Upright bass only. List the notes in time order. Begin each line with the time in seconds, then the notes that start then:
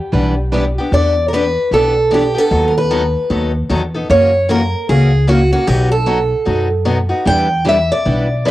0.13 B1
0.92 E2
1.71 B1
2.51 D#2
3.30 D#2
3.70 E2
4.10 F#2
4.89 C#2
5.68 B1
6.47 F#2
7.26 E2
8.06 B1